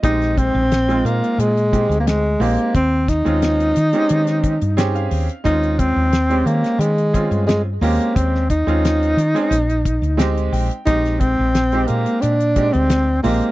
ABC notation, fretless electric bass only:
X:1
M:4/4
L:1/16
Q:1/4=89
K:Eb
V:1 name="Fretless electric bass" clef=bass
B,,,3 B,,,3 B,, z B,,3 D,,3 B,,, z | E,,3 E,,3 E, z E,3 G,,3 E,, z | E,,3 E,,3 E, z E,3 G,,3 E,, z | E,,3 E,,3 E, z B,,,3 D,,3 B,,, z |
B,,,3 B,,,3 B,, z B,,3 D,,3 B,,, z |]